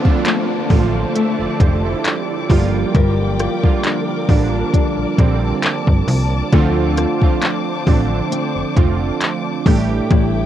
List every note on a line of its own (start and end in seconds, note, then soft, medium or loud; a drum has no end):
0.00 0.05 D3 loud
0.00 2.86 D3 medium
0.00 0.05 F3 loud
0.00 0.06 A3 loud
0.00 0.06 C4 loud
0.00 0.72 F4 loud
0.00 2.87 F4 medium
0.00 2.46 C5 medium
0.00 9.62 D5 medium
0.00 2.46 A5 medium
0.00 10.46 D6 medium
0.00 downlifter medium
0.05 0.63 D3 medium
0.05 0.63 F3 medium
0.05 0.63 A3 medium
0.05 0.69 C4 medium
0.05 0.63 C4 medium
0.05 0.64 D4 medium
0.05 kick medium
0.25 1.14 A3 medium
0.25 clap loud
0.25 closed hi-hat medium
0.70 1.05 A1 loud
0.70 1.50 D3 medium
0.70 1.50 F3 medium
0.70 1.50 A3 medium
0.70 2.59 C4 medium
0.70 1.50 C4 medium
0.70 1.16 F4 loud
0.70 kick medium
0.70 open hi-hat medium
1.15 2.49 A3 medium
1.15 1.39 A4 medium
1.15 1.39 E5 medium
1.15 closed hi-hat medium
1.40 1.48 F1 medium
1.40 1.60 A4 medium
1.40 1.59 D5 medium
1.60 1.95 F1 medium
1.60 1.84 G4 medium
1.60 1.83 C5 medium
1.60 kick loud
1.60 closed hi-hat medium
1.85 2.04 E4 medium
1.85 2.04 A4 medium
2.05 2.28 D4 medium
2.05 2.28 G4 medium
2.05 clap loud
2.05 closed hi-hat medium
2.30 2.72 E4 medium
2.30 2.72 A4 medium
2.49 2.84 G1 loud
2.49 3.48 D3 medium
2.49 3.48 F3 medium
2.49 2.93 G3 medium
2.49 3.48 G3 medium
2.49 2.57 A3 medium
2.49 3.49 F4 loud
2.49 6.49 A#4 medium
2.49 4.27 G5 medium
2.49 kick loud
2.49 open hi-hat medium
2.57 3.52 A#3 medium
2.94 3.48 G1 loud
2.94 6.53 G3 medium
2.94 6.53 A#4 medium
2.94 kick loud
2.94 closed hi-hat medium
3.39 4.28 F4 medium
3.39 cross-stick medium
3.39 closed hi-hat medium
3.63 4.21 D3 medium
3.63 4.21 F3 medium
3.63 4.21 G3 medium
3.63 4.21 A#3 medium
3.63 4.22 F4 medium
3.63 kick medium
3.84 4.73 D4 medium
3.84 clap loud
3.84 closed hi-hat medium
4.29 4.63 A1 medium
4.29 5.08 D3 medium
4.29 5.08 F3 medium
4.29 5.08 G3 medium
4.29 5.08 A#3 medium
4.29 5.09 D4 loud
4.29 6.97 F4 medium
4.29 9.62 A5 medium
4.29 kick medium
4.29 open hi-hat medium
4.73 7.42 D4 medium
4.73 kick medium
4.73 closed hi-hat medium
4.98 5.06 A#1 medium
5.18 5.53 A#1 medium
5.18 6.37 D3 medium
5.18 6.37 F3 medium
5.18 6.37 G3 medium
5.18 6.38 A#3 medium
5.18 6.38 C4 medium
5.18 kick medium
5.18 closed hi-hat medium
5.63 clap loud
5.63 closed hi-hat medium
5.87 6.03 G1 loud
5.87 kick medium
6.08 6.42 C2 loud
6.08 open hi-hat medium
6.52 7.06 D2 loud
6.52 10.02 D3 medium
6.52 7.12 D3 loud
6.52 7.13 F3 loud
6.52 7.13 A3 loud
6.52 7.13 C4 loud
6.52 7.13 F4 loud
6.52 10.03 A4 medium
6.52 9.63 C5 medium
6.52 kick loud
6.52 closed hi-hat medium
6.97 7.86 F4 medium
6.97 cross-stick medium
6.97 closed hi-hat medium
7.22 7.79 D3 medium
7.22 7.79 F3 medium
7.22 7.80 A3 medium
7.22 7.80 C4 medium
7.22 7.80 F4 medium
7.22 kick loud
7.42 8.30 C4 medium
7.42 clap loud
7.42 closed hi-hat medium
7.87 8.21 A1 medium
7.87 8.66 D3 medium
7.87 8.66 F3 medium
7.87 8.66 A3 medium
7.87 8.67 C4 medium
7.87 8.67 D4 loud
7.87 9.76 F4 medium
7.87 kick loud
7.87 open hi-hat soft
8.32 9.76 C4 medium
8.32 closed hi-hat medium
8.56 8.64 F1 medium
8.76 9.11 F1 medium
8.76 9.66 D3 medium
8.76 9.66 F3 medium
8.76 9.65 A3 medium
8.76 9.67 C4 medium
8.76 9.67 F4 medium
8.76 kick loud
8.76 closed hi-hat medium
9.21 clap loud
9.21 closed hi-hat medium
9.66 10.01 A1 loud
9.66 10.09 A2 medium
9.66 10.46 E3 loud
9.66 10.46 G3 medium
9.66 10.46 A3 medium
9.66 10.46 D4 medium
9.66 10.46 G4 loud
9.66 10.46 A4 medium
9.66 10.46 E5 medium
9.66 10.46 G5 medium
9.66 kick loud
9.66 open hi-hat medium
10.11 10.46 A1 loud
10.11 10.46 A2 medium
10.11 10.46 E4 medium
10.11 kick loud
10.11 closed hi-hat medium